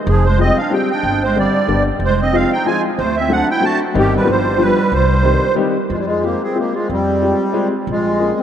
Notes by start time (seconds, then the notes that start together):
0.07 F1 F3 G#4
0.25 G#3 C5
0.38 G3 G#3 C4 F4 G4 D#5
0.44 C4
0.57 D4 F5
0.70 G3 G#3 C4 F4 G4 G5
0.77 C4
0.91 D4 G5
1.03 G1
1.23 G#3 C5
1.35 D3 G3 C4 D4 G4 D5
1.40 G3
1.67 G1 D3 G3 B3 D4 G4
1.99 F1
2.05 G#3 C5
2.22 C4 D#5
2.32 F3 G#3 C4 D#4 F4 F5
2.39 C4
2.53 D#4 G5
2.65 F3 G#3 C4 D#4 F4 G#5
2.70 F4
2.99 D2 C5
3.03 A3
3.16 C4 E5
3.29 F#3 A3 C4 D4 F#4 F#5
3.36 D4
3.51 E4 G5
3.60 F#3 A3 C4 D4 F#4
3.65 F#4 A5
3.94 G1 D#3 G3 C4 D#4 G4
3.99 D#3 G4
4.15 G3 B4
4.24 G1 F3 G3 B3 D4 F4
4.31 G3 C5
4.57 F3 G3 B3 D4 F4 B4
4.92 C2 G3 C5
5.23 D#3 G3 C4 D#4 G4
5.55 D#3 G3 C4 D#4 G4
5.90 F2 G#3 F4
5.98 G3 E4
6.05 G#3 F4
6.22 G#3 A#3 C4 F4 G4
6.42 C4 G#4
6.55 G#3 A#3 C4 F4 G4
6.60 G4
6.75 G#3 F4
6.89 F2 G3 C4
7.21 G#3 C4 F4 G4
7.53 G#3 C4 F4 G4
7.87 A#1 G#3 F4
8.19 A#3 C#4 F4 G#4
8.39 C4